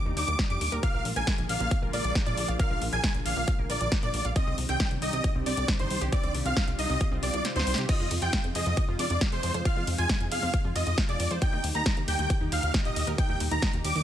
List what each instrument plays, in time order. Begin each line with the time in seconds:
Already playing: analog synth pad A#2 D#3 G3 D4 G4
0.06 analog synth bass D#2, synth pluck D#4
0.17 analog synth bass D#2, synth pluck D#4, supersaw synth D6, open hi-hat
0.28 analog synth bass D#2, closed hi-hat
0.39 synth pluck D#5, kick, snare, closed hi-hat
0.50 analog synth bass F2, synth pluck G4, supersaw synth D6, closed hi-hat
0.61 analog synth bass D#2, open hi-hat
0.72 analog synth bass D#2, synth pluck A#4, closed hi-hat
0.83 analog synth pad D3 F3 G#3 A#3 F4, synth pluck A#4, supersaw synth F5, kick, closed hi-hat
0.94 analog synth bass A#1, synth pluck A#4
1.05 analog synth bass A#1, open hi-hat
1.16 analog synth bass A#1, synth pluck A#4, supersaw synth G#5, closed hi-hat
1.27 synth pluck A#5, kick, snare, closed hi-hat
1.38 analog synth bass A#1, closed hi-hat
1.49 analog synth bass A#1, synth pluck D5, supersaw synth F5, open hi-hat
1.60 analog synth bass A#1, synth pluck A#3, closed hi-hat
1.71 kick, closed hi-hat
1.82 analog synth bass A#1, synth pluck A#4
1.93 analog synth bass A#1, synth pluck A#4, supersaw synth D5, open hi-hat
2.04 analog synth bass A#1, closed hi-hat
2.15 synth pluck A#5, kick, snare, closed hi-hat
2.26 analog synth bass A#2, supersaw synth D5, synth pluck D5, closed hi-hat
2.37 analog synth bass A#1, open hi-hat
2.48 analog synth bass A#1, synth pluck F5, closed hi-hat
2.59 synth pluck A#4, supersaw synth F5, kick, closed hi-hat
2.70 analog synth bass A#1, synth pluck A#4
2.82 analog synth bass A#1, open hi-hat
2.92 analog synth bass A#1, synth pluck A#4, supersaw synth G#5, closed hi-hat
3.04 synth pluck A#5, kick, snare, closed hi-hat
3.15 analog synth bass A#1, closed hi-hat
3.25 analog synth bass A#1, synth pluck D5, supersaw synth F5, open hi-hat
3.37 analog synth bass A#1, synth pluck A#3, open hi-hat
3.48 kick, closed hi-hat
3.59 analog synth bass A#1, synth pluck A#4
3.70 analog synth bass A#1, synth pluck A#4, supersaw synth D5, open hi-hat
3.81 analog synth bass A#1, closed hi-hat
3.92 synth pluck A#5, kick, snare, closed hi-hat
4.03 analog synth bass A#2, supersaw synth D5, synth pluck D5, closed hi-hat
4.14 analog synth bass A#1, open hi-hat
4.25 analog synth bass A#1, synth pluck F5, closed hi-hat
4.36 analog synth pad C3 D#3 G3 D4 G4, synth pluck C4, supersaw synth D#5, kick, closed hi-hat
4.47 analog synth bass C2, synth pluck C4
4.58 analog synth bass C2, open hi-hat
4.69 analog synth bass C2, synth pluck C4, supersaw synth G5, closed hi-hat
4.80 synth pluck C5, kick, snare, closed hi-hat
4.91 analog synth bass C2, closed hi-hat
5.02 analog synth bass C2, synth pluck D#4, supersaw synth D#5, open hi-hat
5.13 analog synth bass C2, synth pluck C3, closed hi-hat
5.24 kick, closed hi-hat
5.35 analog synth bass C2, synth pluck C4
5.46 analog synth bass C2, synth pluck C4, supersaw synth D5, open hi-hat
5.57 analog synth bass C2, closed hi-hat
5.68 synth pluck C5, kick, snare, closed hi-hat
5.79 analog synth bass G1, synth pluck D#4, supersaw synth C5, closed hi-hat
5.90 analog synth bass C2, open hi-hat
6.01 analog synth bass C2, synth pluck G4, closed hi-hat
6.12 synth pluck C4, analog synth pad F4, supersaw synth D5, kick, closed hi-hat
6.23 analog synth bass C2, synth pluck C4, closed hi-hat
6.34 analog synth bass C2, open hi-hat
6.45 analog synth bass C2, synth pluck C4, supersaw synth F5, closed hi-hat
6.56 synth pluck C5, kick, snare, closed hi-hat
6.68 analog synth bass C2, closed hi-hat
6.78 analog synth bass C2, synth pluck D#4, supersaw synth D#5, open hi-hat
6.90 analog synth bass C2, synth pluck C3, open hi-hat
7.01 kick, closed hi-hat
7.12 analog synth bass C2, synth pluck C4
7.23 analog synth bass C2, synth pluck C4, supersaw synth D5, open hi-hat
7.34 analog synth bass C2, closed hi-hat
7.45 synth pluck C5, snare, closed hi-hat
7.56 analog synth bass D2, synth pluck D#4, supersaw synth C5, snare, closed hi-hat
7.67 analog synth bass C2, open hi-hat
7.74 analog synth bass C2, synth pluck G4, snare, closed hi-hat
7.89 analog synth pad F3 G#3 D#4 F4, synth pluck F4, supersaw synth D#5, kick, closed hi-hat, crash, ride
8.00 analog synth bass F2, synth pluck F4
8.11 analog synth bass F2, open hi-hat, ride
8.22 analog synth bass F2, synth pluck F4, supersaw synth G5, closed hi-hat
8.33 synth pluck F5, kick, snare, closed hi-hat, ride
8.44 analog synth bass F2, closed hi-hat
8.55 analog synth bass F2, synth pluck G#4, supersaw synth D#5, open hi-hat, ride
8.66 analog synth bass F2, synth pluck F3, closed hi-hat
8.77 kick, closed hi-hat, ride
8.88 analog synth bass F2, synth pluck F4
8.99 analog synth bass F2, synth pluck F4, supersaw synth D5, open hi-hat, ride
9.10 analog synth bass F2, closed hi-hat
9.21 synth pluck F5, kick, snare, closed hi-hat, ride
9.32 analog synth bass F1, synth pluck G#4, supersaw synth C5, closed hi-hat
9.43 analog synth bass F2, open hi-hat, ride
9.54 analog synth bass F2, synth pluck C5, closed hi-hat
9.65 synth pluck F4, supersaw synth F5, kick, closed hi-hat, ride
9.76 analog synth bass F2, synth pluck F4
9.87 analog synth bass F2, open hi-hat, ride
9.98 analog synth bass F2, synth pluck F4, supersaw synth G#5, closed hi-hat
10.09 synth pluck F5, kick, snare, closed hi-hat, ride
10.21 analog synth bass F2, closed hi-hat
10.31 analog synth bass F2, synth pluck G#4, supersaw synth F5, open hi-hat, ride
10.42 analog synth bass F2, synth pluck F3, open hi-hat
10.54 kick, closed hi-hat, ride
10.64 analog synth bass F2, synth pluck F4
10.75 analog synth bass F2, synth pluck F4, supersaw synth D#5, open hi-hat, ride
10.87 analog synth bass F2, closed hi-hat
10.98 synth pluck F5, kick, snare, closed hi-hat, ride
11.09 analog synth bass F1, synth pluck G#4, supersaw synth D5, closed hi-hat
11.20 analog synth bass F2, open hi-hat, ride
11.31 analog synth bass F2, synth pluck C5, closed hi-hat
11.42 analog synth pad A#2 D#3 G3 D#4 G4, synth pluck D#4, supersaw synth G5, kick, closed hi-hat, ride
11.53 analog synth bass D#2, synth pluck D#4
11.64 analog synth bass D#2, open hi-hat, ride
11.75 analog synth bass D#2, synth pluck D#4, supersaw synth A#5, closed hi-hat
11.86 synth pluck D#5, kick, snare, closed hi-hat, ride
11.97 analog synth bass D#2, closed hi-hat
12.08 analog synth bass D#2, synth pluck G4, supersaw synth G5, open hi-hat, ride
12.19 analog synth bass D#2, synth pluck D#3, closed hi-hat
12.30 kick, closed hi-hat, ride
12.41 analog synth bass D#2, synth pluck D#4
12.52 analog synth bass D#2, synth pluck D#4, supersaw synth F5, open hi-hat, ride
12.63 analog synth bass D#2, closed hi-hat
12.74 synth pluck D#5, kick, snare, closed hi-hat, ride
12.85 analog synth bass D#1, synth pluck G4, supersaw synth D#5, closed hi-hat
12.96 analog synth bass D#2, open hi-hat, ride
13.07 analog synth bass D#2, synth pluck A#4, closed hi-hat
13.18 synth pluck D#4, supersaw synth G5, kick, closed hi-hat, ride
13.29 analog synth bass D#2, synth pluck D#4
13.40 analog synth bass D#2, open hi-hat, ride
13.51 analog synth bass D#2, synth pluck D#4, supersaw synth A#5, closed hi-hat
13.62 synth pluck D#5, kick, snare, closed hi-hat, ride
13.73 analog synth bass D#2, closed hi-hat
13.84 analog synth bass D#2, synth pluck G4, supersaw synth D6, open hi-hat, ride
13.96 analog synth bass D#2, synth pluck D#3, open hi-hat